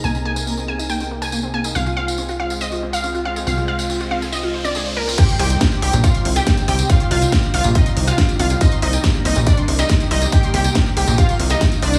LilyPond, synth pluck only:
\new Staff \with { instrumentName = "Synth pluck" } { \time 4/4 \key c \minor \tempo 4 = 140 aes''16 r16 aes''8. r16 aes''16 r16 g''8 r16 aes''8 r16 aes''16 r16 | f''16 r16 f''8. r16 f''16 r16 ees''8 r16 f''8 r16 f''16 r16 | f''16 r16 f''8. r16 f''16 r16 ees''8 r16 d''8 r16 bes'16 r16 | <g' g''>16 r16 <g' g''>8. r16 <g' g''>16 r16 <f' f''>8 r16 <g' g''>8 r16 <g' g''>16 r16 |
<f' f''>16 r16 <f' f''>8. r16 <f' f''>16 r16 <ees' ees''>8 r16 <f' f''>8 r16 <f' f''>16 r16 | <ees' ees''>16 r16 <ees' ees''>8. r16 <ees' ees''>16 r16 <d' d''>8 r16 <ees' ees''>8 r16 <ees' ees''>16 r16 | <g' g''>16 r16 <g' g''>8. r16 <g' g''>16 r16 <f' f''>8 r16 <ees' ees''>8 r16 <d' d''>16 r16 | }